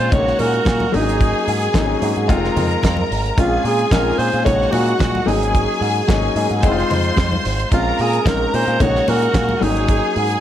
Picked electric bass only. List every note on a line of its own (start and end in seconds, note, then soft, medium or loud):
0.12 0.32 A#1 loud
0.40 0.59 A#2 loud
0.66 0.86 A#2 medium
0.94 1.32 G#1 medium
1.48 1.67 G#2 loud
1.74 1.94 G#1 loud
2.02 2.12 G#2 loud
2.17 2.31 G#2 medium
2.29 2.48 F1 loud
2.56 2.75 F2 medium
2.84 3.03 F2 medium
3.11 3.30 G#1 medium
3.38 3.57 A#1 medium
3.64 3.84 A#2 medium
3.91 4.11 A#1 loud
4.19 4.29 A#2 loud
4.34 4.43 A#2 medium
4.46 4.66 A#1 loud
4.73 4.92 A#2 loud
5.01 5.20 A#2 medium
5.27 5.65 G#1 loud
5.81 6.01 G#2 loud
6.09 6.28 G#1 medium
6.36 6.46 G#2 loud
6.51 6.65 G#2 medium
6.63 6.82 F1 loud
6.91 7.10 F2 loud
7.17 7.36 F2 medium
7.45 7.64 G#1 medium
7.72 7.91 A#1 medium
7.99 8.18 A#2 medium
8.26 8.45 A#1 medium
8.54 8.64 A#2 loud
8.67 8.76 A#2 medium
8.80 8.99 A#1 loud
9.08 9.27 A#2 loud
9.35 9.53 A#2 loud
9.62 10.00 G#1 medium
10.16 10.35 G#2 medium